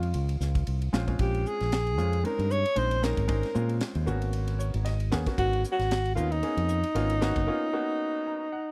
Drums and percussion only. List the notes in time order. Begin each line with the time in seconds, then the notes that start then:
0.03 ride
0.14 ride
0.29 ride
0.41 snare, hi-hat pedal
0.55 kick, ride
0.67 ride
0.82 ride
0.93 snare, hi-hat pedal
1.08 kick, ride
1.19 kick, ride
1.35 ride
1.46 hi-hat pedal
1.60 snare, ride
1.72 snare, ride
1.87 ride
1.98 hi-hat pedal
2.13 ride
2.25 ride
2.39 ride
2.50 hi-hat pedal
2.65 ride
2.76 ride
2.91 ride
3.03 snare, hi-hat pedal
3.17 kick, ride
3.28 kick, ride
3.43 snare, ride
3.55 hi-hat pedal
3.69 ride
3.81 snare, ride
3.95 ride
4.07 hi-hat pedal
4.22 ride
4.33 ride
4.48 ride
4.60 hi-hat pedal
4.74 ride
4.86 snare, ride
5.00 ride
5.12 snare, hi-hat pedal
5.26 kick, snare, ride
5.38 kick, ride
5.53 ride
5.64 hi-hat pedal
5.79 snare, ride
5.91 snare, ride
6.06 ride
6.17 hi-hat pedal
6.32 ride
6.43 ride
6.57 ride
6.69 hi-hat pedal
6.83 ride
6.95 ride
7.10 ride
7.22 snare, hi-hat pedal
7.36 kick, ride